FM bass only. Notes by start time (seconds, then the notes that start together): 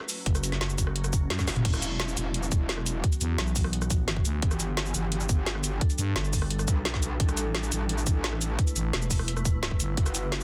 0.26 F#1
0.78 F#1
1.30 F#2
3.21 E2
3.38 B1
4.25 D2
5.98 G2
6.16 G1
8.76 A1
8.93 E1
9.80 G1